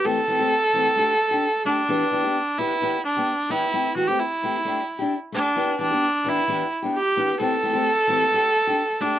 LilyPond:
<<
  \new Staff \with { instrumentName = "Viola" } { \time 4/4 \key g \major \tempo 4 = 130 a'2.~ a'8 d'8~ | d'4. e'4 d'4 e'8~ | e'8 fis'16 g'16 e'2 r8 d'8~ | d'8 d'4 e'4 r8 g'4 |
a'2.~ a'8 d'8 | }
  \new Staff \with { instrumentName = "Steel-string acoustic guitar" } { \time 4/4 \key g \major <e a c' g'>16 r16 <e a c' g'>16 <a c' g'>16 r8 <e a c' g'>16 r16 <a d' g'>16 r8 <d' g'>16 r8 <a d' g'>16 r16 | <e b d' g'>16 r16 <e b d' g'>16 <b d' g'>16 r8 <e b d' g'>16 r16 <e b d' g'>16 r8 <b g'>16 r8 <e b d' g'>16 r16 | <e a c' g'>16 r16 <e a g'>16 <a c' g'>16 r8 <e a c' g'>16 r16 <a d' g'>16 r8 <d' g'>16 r8 <a d' g'>16 r16 | <e b d' g'>16 r16 <e b d' g'>16 <b d' g'>16 r8 <e b d' g'>16 r16 <e b d' g'>16 r8 <b d' g'>16 r8 <e b d' g'>16 r16 |
<e a c' g'>16 r16 <e a c' g'>16 <a c' g'>16 r8 <e a c' g'>16 r16 <a d' g'>16 r8 <d' g'>16 r8 <a d' g'>16 r16 | }
>>